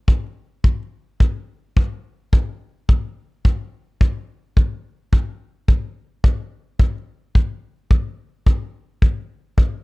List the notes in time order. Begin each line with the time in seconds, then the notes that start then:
0.08 kick
0.64 kick
1.20 kick
1.77 kick
2.33 kick
2.89 kick
3.45 kick
4.01 kick
4.57 kick
5.13 kick
5.68 kick
6.24 kick
6.79 kick
7.35 kick
7.91 kick
8.46 kick
9.02 kick
9.58 kick